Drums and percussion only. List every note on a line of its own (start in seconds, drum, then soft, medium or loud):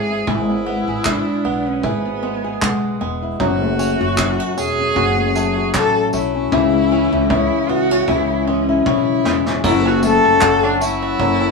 0.27 kick loud
1.05 kick loud
1.05 clap loud
1.83 kick medium
2.62 kick loud
2.62 clap loud
3.40 kick loud
3.79 tambourine medium
4.18 kick loud
4.18 clap loud
4.58 tambourine medium
4.96 kick medium
5.35 tambourine medium
5.74 kick loud
5.74 clap loud
6.13 tambourine medium
6.52 kick loud
7.30 kick loud
8.08 kick medium
8.86 kick loud
9.25 snare loud
9.46 snare medium
9.64 kick loud
9.64 crash loud
10.03 tambourine medium
10.41 kick loud
10.41 clap loud
10.81 tambourine medium
11.20 kick medium